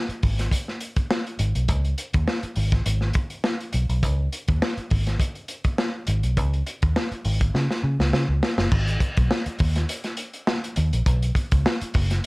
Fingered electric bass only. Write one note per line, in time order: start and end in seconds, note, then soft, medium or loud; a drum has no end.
0.09 muted fingered electric bass stroke medium
0.23 0.47 G#1 medium
1.39 1.52 G#1 loud
1.55 1.69 B1 medium
1.69 1.93 C#2 medium
2.14 2.25 D#2 loud
2.43 muted fingered electric bass stroke medium
2.57 2.81 G#1 medium
2.86 3.10 G#1 loud
3.74 3.87 B1 medium
3.89 4.03 B1 medium
4.03 4.27 C#2 loud
4.49 4.60 D#2 medium
4.77 muted fingered electric bass stroke soft
4.91 5.15 G#1 medium
6.08 6.21 G#1 medium
6.24 6.37 B1 medium
6.37 6.61 C#2 loud
6.83 6.94 D#2 medium
7.11 muted fingered electric bass stroke soft
7.25 7.49 G#1 loud
7.54 7.67 C#3 loud
7.83 7.96 C#3 loud
7.99 8.11 C#2 medium
8.13 8.26 C#3 loud
8.29 8.40 C#2 medium
8.58 8.69 F#1 medium
8.72 8.96 G#1 loud
9.17 9.28 B1 medium
9.46 muted fingered electric bass stroke medium
9.60 9.84 D#2 loud
10.78 10.90 D#2 medium
10.93 11.04 A#1 medium
11.06 11.30 B1 loud
11.52 11.63 C#2 loud
11.82 muted fingered electric bass stroke soft
11.95 12.19 F#1 medium